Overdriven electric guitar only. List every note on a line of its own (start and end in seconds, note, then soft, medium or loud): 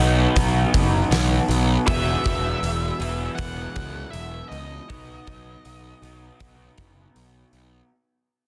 0.00 1.85 B2 medium
0.00 1.87 F#3 medium
0.00 1.87 B3 medium
0.00 1.85 D#4 medium
0.00 1.88 F#4 medium
1.86 2.98 E2 medium
1.86 2.98 B2 medium
1.86 2.98 E3 medium
1.86 3.01 B3 medium
1.86 2.99 E4 medium
1.86 2.99 G#4 medium
3.00 4.88 E2 medium
3.00 4.88 B2 medium
3.00 4.87 E3 medium
3.00 4.90 B3 medium
3.00 4.87 E4 medium
3.00 4.87 G#4 medium
4.89 6.00 B2 medium
4.89 6.00 F#3 medium
4.89 6.00 B3 medium
4.89 6.01 D#4 medium
4.89 6.01 F#4 medium
6.03 7.90 B2 medium
6.03 7.89 F#3 medium
6.03 7.89 B3 medium
6.03 7.89 D#4 medium
6.03 7.89 F#4 medium